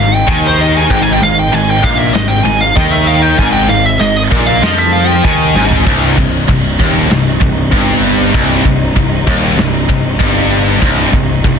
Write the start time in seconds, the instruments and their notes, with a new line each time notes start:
Already playing: picked electric bass G#1, distorted electric guitar G#2, string section D#3 G#3 D#4
0.00 lead electric guitar F5
0.14 lead electric guitar G5
0.27 picked electric bass D#2, distorted electric guitar D#3, lead electric guitar G#5, kick, crash
0.47 lead electric guitar C5
0.61 lead electric guitar D#5
0.77 lead electric guitar G#5
0.90 picked electric bass G#1, distorted electric guitar G#2, lead electric guitar G5, kick, crash
1.03 lead electric guitar G#5
1.13 lead electric guitar G5
1.21 picked electric bass G#1, distorted electric guitar G#2, lead electric guitar F5
1.39 lead electric guitar G5
1.52 picked electric bass G#1, distorted electric guitar G#2, lead electric guitar G#5, crash
1.70 lead electric guitar G5
1.83 picked electric bass A#1, distorted electric guitar A#2, lead electric guitar F5, kick
1.99 lead electric guitar E5
2.14 picked electric bass G#1, distorted electric guitar G#2, lead electric guitar D#5, snare, crash
2.28 lead electric guitar G5
2.44 picked electric bass G#1, distorted electric guitar G#2, lead electric guitar G#5
2.61 lead electric guitar F5
2.76 picked electric bass D#2, distorted electric guitar D#3, lead electric guitar D#5, kick, crash
2.92 lead electric guitar E5
3.07 lead electric guitar F5
3.22 lead electric guitar G5
3.38 picked electric bass G#1, distorted electric guitar G#2, lead electric guitar G#5, kick, crash
3.53 lead electric guitar G5
3.69 picked electric bass G#1, distorted electric guitar G#2, lead electric guitar F5
3.85 lead electric guitar E5
4.00 picked electric bass G#1, distorted electric guitar G#2, lead electric guitar D#5, crash
4.31 picked electric bass A#1, distorted electric guitar A#2, kick
4.47 lead electric guitar F5
4.62 picked electric bass F2, distorted electric guitar F3, lead electric guitar D#5, snare, crash
4.78 lead electric guitar E5
4.93 lead electric guitar F5
5.07 lead electric guitar G5
5.24 picked electric bass D#2, distorted electric guitar D#3, lead electric guitar G#5, kick, crash
5.55 picked electric bass G#1, distorted electric guitar G#2, snare
5.71 floor tom
5.86 picked electric bass C1, distorted electric guitar C2, string section C3 G3 C4 D#4, kick, crash
6.17 picked electric bass C1, distorted electric guitar C2, kick
6.48 picked electric bass C1, distorted electric guitar C2, kick, crash
6.80 picked electric bass D#1, distorted electric guitar D#2, kick
7.10 picked electric bass C1, distorted electric guitar C2, snare, crash
7.41 picked electric bass C1, distorted electric guitar C2, kick
7.72 picked electric bass G1, distorted electric guitar G2, kick, crash
8.34 picked electric bass C1, distorted electric guitar C2, kick, crash
8.65 picked electric bass C1, distorted electric guitar C2, kick
8.96 picked electric bass C1, distorted electric guitar C2, kick, crash
9.27 picked electric bass D#1, distorted electric guitar D#2, kick
9.57 picked electric bass C1, distorted electric guitar C2, snare, crash
9.89 picked electric bass C1, distorted electric guitar C2, kick
10.19 picked electric bass G1, distorted electric guitar G2, kick, crash
10.81 picked electric bass C1, distorted electric guitar C2, kick, crash
11.13 picked electric bass C1, distorted electric guitar C2, kick
11.44 picked electric bass C1, distorted electric guitar C2, kick, crash